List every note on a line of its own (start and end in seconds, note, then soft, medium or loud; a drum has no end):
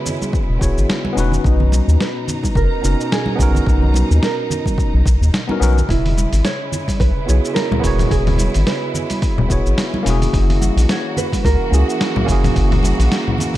0.00 1.41 C#3 medium
0.00 1.41 G#3 medium
0.00 0.57 B3 medium
0.00 0.57 E4 medium
0.00 1.41 E4 medium
0.00 0.58 F#4 medium
0.00 0.59 G#4 medium
0.00 0.86 B4 medium
0.00 0.60 C#5 loud
0.06 low conga medium
0.06 shaker medium
0.22 high conga medium
0.22 shaker soft
0.33 kick loud
0.33 shaker soft
0.49 0.58 E1 medium
0.59 0.73 E1 medium
0.59 1.12 B3 medium
0.59 1.14 E4 medium
0.59 1.14 F#4 medium
0.59 1.14 G#4 medium
0.59 1.15 C#5 medium
0.59 kick loud
0.59 shaker medium
0.77 0.86 G#1 medium
0.77 shaker soft
0.90 snare loud
0.90 shaker soft
1.05 high conga medium
1.13 1.38 E1 medium
1.13 2.79 B3 medium
1.13 2.80 C#4 medium
1.13 2.81 D#4 medium
1.18 2.81 F#4 medium
1.18 2.82 B4 loud
1.18 shaker medium
1.32 low conga medium
1.32 shaker soft
1.44 1.81 B1 medium
1.44 5.85 B2 medium
1.44 5.85 D#4 medium
1.44 2.03 D#4 medium
1.44 5.85 A#5 medium
1.44 kick loud
1.44 shaker soft
1.60 low conga medium
1.72 high conga medium
1.72 shaker medium
1.88 1.97 D#2 medium
1.88 shaker soft
2.01 2.56 B4 loud
2.01 snare loud
2.01 shaker soft
2.28 low conga medium
2.28 shaker medium
2.43 kick medium
2.43 high conga medium
2.43 shaker soft
2.55 2.67 F#1 loud
2.55 3.08 A#4 medium
2.55 kick loud
2.55 shaker soft
2.82 2.95 F#1 medium
2.82 3.34 B3 medium
2.82 3.36 C#4 medium
2.82 3.36 D#4 medium
2.82 3.37 F#4 medium
2.82 3.37 A#4 medium
2.82 shaker medium
3.01 shaker soft
3.12 3.64 G#4 medium
3.12 snare loud
3.12 shaker soft
3.26 high conga medium
3.36 3.60 B1 medium
3.36 5.01 B3 medium
3.36 5.02 C#4 medium
3.36 5.03 D#4 medium
3.36 kick loud
3.40 5.04 F#4 medium
3.40 5.05 A#4 loud
3.40 shaker medium
3.55 low conga medium
3.55 shaker soft
3.67 4.03 B1 medium
3.67 4.25 F#4 medium
3.67 kick loud
3.67 shaker soft
3.82 low conga medium
3.94 high conga medium
3.94 shaker medium
4.11 4.19 D#2 medium
4.11 shaker soft
4.23 5.30 A#4 medium
4.23 snare loud
4.23 shaker soft
4.50 low conga medium
4.50 shaker medium
4.66 kick medium
4.66 high conga medium
4.66 shaker soft
4.78 kick loud
4.78 shaker soft
4.94 5.03 B1 medium
5.06 5.17 B1 medium
5.06 kick loud
5.06 shaker medium
5.21 5.30 D#2 medium
5.21 shaker soft
5.34 snare medium
5.34 shaker soft
5.47 5.58 B3 medium
5.47 5.58 C#4 medium
5.47 5.59 D#4 medium
5.47 5.59 F#4 medium
5.47 5.60 A#4 medium
5.47 high conga medium
5.60 5.82 B1 medium
5.60 5.79 B3 medium
5.60 5.79 C#4 medium
5.60 5.80 D#4 medium
5.60 5.80 F#4 medium
5.60 5.80 A#4 medium
5.60 shaker medium
5.78 low conga medium
5.78 shaker soft
5.89 6.26 E1 medium
5.89 10.30 C#3 medium
5.89 10.30 G#3 medium
5.89 10.30 E4 medium
5.89 6.47 E4 medium
5.89 kick loud
5.89 open hi-hat soft
5.89 shaker soft
6.06 open hi-hat soft
6.06 low conga medium
6.17 high conga medium
6.17 shaker medium
6.33 6.41 G#1 loud
6.33 open hi-hat soft
6.33 shaker soft
6.45 6.99 C#5 loud
6.45 snare medium
6.45 open hi-hat soft
6.45 shaker soft
6.72 low conga medium
6.72 shaker medium
6.88 kick medium
6.88 open hi-hat soft
6.88 high conga medium
6.88 shaker soft
7.00 7.12 B1 loud
7.00 7.54 B4 loud
7.00 kick loud
7.00 open hi-hat soft
7.00 shaker soft
7.26 7.40 B1 medium
7.26 7.79 B3 medium
7.26 7.80 E4 medium
7.26 7.81 F#4 medium
7.26 7.81 G#4 medium
7.26 7.82 C#5 medium
7.26 shaker medium
7.45 shaker soft
7.54 8.12 A#4 medium
7.54 snare medium
7.54 open hi-hat medium
7.54 shaker soft
7.72 high conga medium
7.72 low conga medium
7.80 8.05 E1 medium
7.80 9.46 B3 medium
7.80 9.46 E4 medium
7.80 9.47 F#4 medium
7.80 kick loud
7.84 9.48 G#4 medium
7.84 9.49 C#5 loud
7.84 open hi-hat medium
7.84 shaker medium
7.99 open hi-hat soft
7.99 low conga medium
7.99 shaker soft
8.10 8.48 E1 medium
8.10 8.68 G#4 medium
8.10 kick loud
8.10 open hi-hat medium
8.10 shaker soft
8.27 open hi-hat soft
8.27 low conga medium
8.38 open hi-hat soft
8.38 high conga medium
8.38 shaker medium
8.54 8.64 G#1 loud
8.54 open hi-hat soft
8.54 shaker soft
8.66 9.74 B4 medium
8.66 snare medium
8.66 open hi-hat medium
8.66 shaker soft
8.94 low conga medium
8.94 shaker medium
9.10 open hi-hat soft
9.10 high conga medium
9.10 shaker soft
9.22 kick loud
9.22 open hi-hat soft
9.22 shaker soft
9.38 9.47 E1 medium
9.38 low conga medium
9.48 9.62 E1 medium
9.48 10.02 B3 medium
9.48 10.03 E4 medium
9.48 10.03 F#4 medium
9.48 10.03 G#4 medium
9.48 10.04 C#5 medium
9.48 kick medium
9.48 shaker medium
9.66 9.75 G#1 medium
9.66 shaker soft
9.78 snare medium
9.78 open hi-hat medium
9.78 shaker soft
9.94 high conga medium
10.03 10.27 E1 medium
10.03 11.68 A#3 medium
10.03 11.69 C#4 medium
10.03 11.70 E4 medium
10.03 open hi-hat medium
10.03 shaker medium
10.08 11.71 F#4 medium
10.08 11.72 G#4 medium
10.22 open hi-hat soft
10.22 low conga medium
10.22 shaker soft
10.32 10.70 F#1 medium
10.32 13.57 E3 medium
10.32 13.57 A#3 medium
10.32 10.72 E4 medium
10.32 13.57 F#4 medium
10.32 kick loud
10.32 open hi-hat medium
10.32 shaker soft
10.50 open hi-hat soft
10.50 low conga medium
10.62 high conga medium
10.62 shaker medium
10.72 10.86 D#4 medium
10.76 10.86 A#1 loud
10.76 open hi-hat soft
10.76 shaker soft
10.89 11.17 C#5 loud
10.89 snare loud
10.89 open hi-hat medium
10.89 shaker soft
11.17 11.45 B4 medium
11.17 low conga medium
11.17 shaker medium
11.33 kick medium
11.33 open hi-hat soft
11.33 high conga medium
11.33 shaker soft
11.45 11.56 C#2 loud
11.45 13.57 A#4 medium
11.45 kick loud
11.45 open hi-hat soft
11.45 shaker soft
11.71 11.84 C#2 medium
11.71 12.23 A#3 medium
11.71 12.25 C#4 medium
11.71 12.25 E4 medium
11.71 12.26 F#4 medium
11.71 12.26 G#4 medium
11.71 shaker medium
11.90 shaker soft
12.01 snare loud
12.01 open hi-hat medium
12.01 shaker soft
12.16 high conga medium
12.16 low conga medium
12.25 12.49 F#1 medium
12.25 13.57 A#3 medium
12.25 13.57 C#4 medium
12.25 13.57 E4 medium
12.25 kick medium
12.25 open hi-hat medium
12.29 13.57 F#4 medium
12.29 13.57 G#4 loud
12.29 shaker medium
12.44 open hi-hat soft
12.44 low conga medium
12.44 shaker soft
12.56 12.93 F#1 medium
12.56 kick loud
12.56 open hi-hat medium
12.56 shaker soft
12.71 open hi-hat soft
12.71 low conga medium
12.83 open hi-hat soft
12.83 high conga medium
12.83 shaker medium
12.99 13.08 A#1 loud
12.99 open hi-hat soft
12.99 shaker soft
13.12 snare loud
13.12 open hi-hat medium
13.12 shaker soft
13.28 low conga medium
13.38 open hi-hat soft
13.38 low conga medium
13.38 shaker medium
13.54 high conga medium